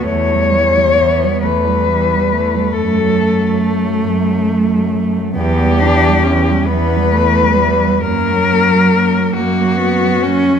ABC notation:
X:1
M:12/8
L:1/16
Q:3/8=45
K:F#phr
V:1 name="Cello"
c6 B6 A6 z6 | G6 B6 ^A6 F6 |]
V:2 name="Cello"
A,2 G,2 B,2 A,2 G,2 A,12- A,2 | B,2 D2 C2 B,2 A,2 G,2 F,6 ^A,2 B,2 C2 |]
V:3 name="Cello" clef=bass
E, G, E, G, E, G, E, G, E, G, E, G, A, F, A, F, A, F, A, F, A, F, A, F, | E, G, E, G, E, G, E, G, E, G, E, G, ^A, F, A, F, A, F, A, F, A, F, A, F, |]
V:4 name="Cello" clef=bass
E,,6 E,,6 F,,6 F,,6 | E,,6 E,,6 F,,6 F,,6 |]